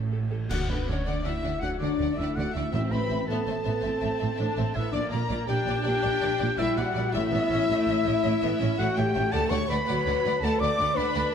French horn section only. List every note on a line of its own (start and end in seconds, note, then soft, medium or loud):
0.49 0.67 F#4 medium
0.66 0.86 B3 medium
0.87 1.06 C#4 medium
1.06 1.24 D4 medium
1.24 1.61 E4 medium
1.62 1.80 F#4 loud
1.79 2.16 D4 medium
2.15 2.34 E4 medium
2.36 2.54 F#4 medium
2.52 2.71 E4 medium
2.72 2.80 E4 medium
2.90 3.26 B4 medium
3.27 4.75 A4 medium
4.76 4.94 E4 loud
4.92 5.01 D4 loud
5.12 5.48 A#4 loud
5.46 5.81 G4 loud
5.83 6.56 G4 loud
6.59 6.77 E4 loud
6.77 7.14 F#4 loud
7.13 8.75 E4 loud
8.79 8.97 F#4 loud
8.99 9.34 G4 loud
9.33 9.51 A4 loud
9.51 9.69 C#5 loud
9.70 10.42 B4 loud
10.43 10.61 A4 loud
10.60 10.97 D5 loud
10.95 11.33 B4 loud